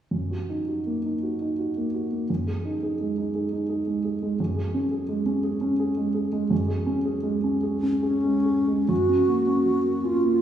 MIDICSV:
0, 0, Header, 1, 3, 480
1, 0, Start_track
1, 0, Key_signature, 6, "major"
1, 0, Tempo, 724638
1, 79, Time_signature, 3, 2, 24, 8
1, 1517, Tempo, 703400
1, 4397, Tempo, 758534
1, 5357, Tempo, 872093
1, 5837, Tempo, 766284
1, 6787, End_track
2, 0, Start_track
2, 0, Title_t, "Alto flute"
2, 0, Program_c, 0, 73
2, 5359, Note_on_c, 0, 61, 57
2, 5831, Note_on_c, 0, 66, 51
2, 5840, Note_off_c, 0, 61, 0
2, 6558, Note_on_c, 0, 65, 48
2, 6568, Note_off_c, 0, 66, 0
2, 6787, Note_off_c, 0, 65, 0
2, 6787, End_track
3, 0, Start_track
3, 0, Title_t, "Grand piano"
3, 0, Program_c, 1, 0
3, 74, Note_on_c, 1, 42, 35
3, 206, Control_c, 1, 64, 127
3, 206, Note_on_c, 1, 66, 27
3, 327, Note_on_c, 1, 63, 27
3, 400, Note_off_c, 1, 66, 0
3, 450, Note_on_c, 1, 66, 26
3, 520, Note_off_c, 1, 63, 0
3, 572, Note_on_c, 1, 58, 29
3, 640, Note_off_c, 1, 66, 0
3, 699, Note_on_c, 1, 63, 25
3, 761, Note_off_c, 1, 58, 0
3, 814, Note_on_c, 1, 66, 29
3, 883, Note_off_c, 1, 63, 0
3, 936, Note_on_c, 1, 63, 27
3, 999, Note_off_c, 1, 66, 0
3, 1052, Note_on_c, 1, 66, 28
3, 1119, Note_off_c, 1, 63, 0
3, 1174, Note_on_c, 1, 58, 27
3, 1237, Note_off_c, 1, 66, 0
3, 1288, Note_on_c, 1, 66, 28
3, 1357, Note_off_c, 1, 58, 0
3, 1402, Note_on_c, 1, 58, 29
3, 1473, Note_off_c, 1, 66, 0
3, 1488, Note_off_c, 1, 42, 0
3, 1519, Note_off_c, 1, 58, 0
3, 1524, Note_on_c, 1, 42, 35
3, 1528, Control_c, 1, 64, 0
3, 1629, Control_c, 1, 64, 127
3, 1643, Note_on_c, 1, 68, 27
3, 1763, Note_on_c, 1, 63, 30
3, 1835, Note_off_c, 1, 68, 0
3, 1884, Note_on_c, 1, 68, 29
3, 1954, Note_off_c, 1, 63, 0
3, 2007, Note_on_c, 1, 56, 29
3, 2074, Note_off_c, 1, 68, 0
3, 2123, Note_on_c, 1, 63, 27
3, 2195, Note_off_c, 1, 56, 0
3, 2238, Note_on_c, 1, 68, 33
3, 2312, Note_off_c, 1, 63, 0
3, 2360, Note_on_c, 1, 63, 30
3, 2429, Note_off_c, 1, 68, 0
3, 2476, Note_on_c, 1, 68, 33
3, 2548, Note_off_c, 1, 63, 0
3, 2596, Note_on_c, 1, 56, 28
3, 2666, Note_off_c, 1, 68, 0
3, 2716, Note_on_c, 1, 68, 32
3, 2785, Note_off_c, 1, 56, 0
3, 2837, Note_on_c, 1, 56, 33
3, 2905, Note_off_c, 1, 68, 0
3, 2927, Note_off_c, 1, 42, 0
3, 2954, Note_off_c, 1, 56, 0
3, 2958, Note_on_c, 1, 42, 41
3, 2963, Control_c, 1, 64, 0
3, 3070, Note_on_c, 1, 68, 31
3, 3074, Control_c, 1, 64, 127
3, 3190, Note_on_c, 1, 61, 33
3, 3263, Note_off_c, 1, 68, 0
3, 3307, Note_on_c, 1, 68, 33
3, 3382, Note_off_c, 1, 61, 0
3, 3424, Note_on_c, 1, 56, 38
3, 3500, Note_off_c, 1, 68, 0
3, 3544, Note_on_c, 1, 61, 31
3, 3619, Note_off_c, 1, 56, 0
3, 3664, Note_on_c, 1, 68, 40
3, 3739, Note_off_c, 1, 61, 0
3, 3783, Note_on_c, 1, 61, 38
3, 3860, Note_off_c, 1, 68, 0
3, 3910, Note_on_c, 1, 68, 40
3, 3980, Note_off_c, 1, 61, 0
3, 4028, Note_on_c, 1, 56, 33
3, 4105, Note_off_c, 1, 68, 0
3, 4148, Note_on_c, 1, 68, 37
3, 4224, Note_off_c, 1, 56, 0
3, 4271, Note_on_c, 1, 56, 40
3, 4345, Note_off_c, 1, 68, 0
3, 4373, Note_off_c, 1, 42, 0
3, 4393, Note_on_c, 1, 42, 48
3, 4408, Control_c, 1, 64, 0
3, 4463, Note_off_c, 1, 56, 0
3, 4505, Note_on_c, 1, 68, 37
3, 4507, Control_c, 1, 64, 127
3, 4621, Note_on_c, 1, 61, 41
3, 4694, Note_off_c, 1, 68, 0
3, 4741, Note_on_c, 1, 68, 39
3, 4813, Note_off_c, 1, 61, 0
3, 4853, Note_on_c, 1, 56, 41
3, 4935, Note_off_c, 1, 68, 0
3, 4985, Note_on_c, 1, 61, 34
3, 5053, Note_off_c, 1, 56, 0
3, 5106, Note_on_c, 1, 68, 41
3, 5182, Note_off_c, 1, 61, 0
3, 5233, Note_on_c, 1, 61, 37
3, 5306, Note_off_c, 1, 68, 0
3, 5356, Note_on_c, 1, 68, 39
3, 5426, Note_off_c, 1, 61, 0
3, 5475, Note_on_c, 1, 56, 30
3, 5545, Note_off_c, 1, 68, 0
3, 5591, Note_on_c, 1, 68, 34
3, 5673, Note_off_c, 1, 56, 0
3, 5716, Note_on_c, 1, 56, 32
3, 5789, Note_off_c, 1, 68, 0
3, 5814, Note_off_c, 1, 42, 0
3, 5830, Note_on_c, 1, 42, 34
3, 5835, Note_off_c, 1, 56, 0
3, 5848, Control_c, 1, 64, 0
3, 5955, Note_on_c, 1, 61, 27
3, 5968, Control_c, 1, 64, 127
3, 6076, Note_on_c, 1, 58, 28
3, 6152, Note_off_c, 1, 61, 0
3, 6193, Note_on_c, 1, 61, 28
3, 6271, Note_off_c, 1, 58, 0
3, 6309, Note_on_c, 1, 54, 30
3, 6388, Note_off_c, 1, 61, 0
3, 6428, Note_on_c, 1, 58, 25
3, 6505, Note_off_c, 1, 54, 0
3, 6550, Note_on_c, 1, 61, 29
3, 6626, Note_off_c, 1, 58, 0
3, 6672, Note_on_c, 1, 58, 29
3, 6746, Note_off_c, 1, 61, 0
3, 6787, Note_off_c, 1, 42, 0
3, 6787, Note_off_c, 1, 58, 0
3, 6787, End_track
0, 0, End_of_file